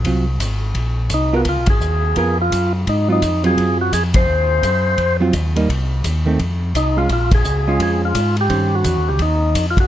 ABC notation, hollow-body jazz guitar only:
X:1
M:4/4
L:1/8
Q:"Swing" 1/4=170
K:Abmix
V:1 name="Hollow-body jazz guitar"
[G,CF] z6 [_CFB] | z4 [_CFB] z3 | z [G,CF] z [G,CF]3 z2 | z4 z [G,CF] z [=G,B,E] |
z3 [E,=A,C] z3 [_A,DF] | z3 [A,DF]3 z2 | [E,Dc]4- [E,Dc] z3 |]